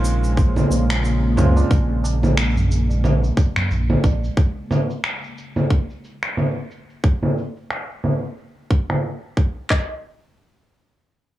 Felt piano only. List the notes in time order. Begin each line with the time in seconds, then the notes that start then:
Already playing: G#3 C4 C#4 F4
1.37 G#3 C4 C#4 F4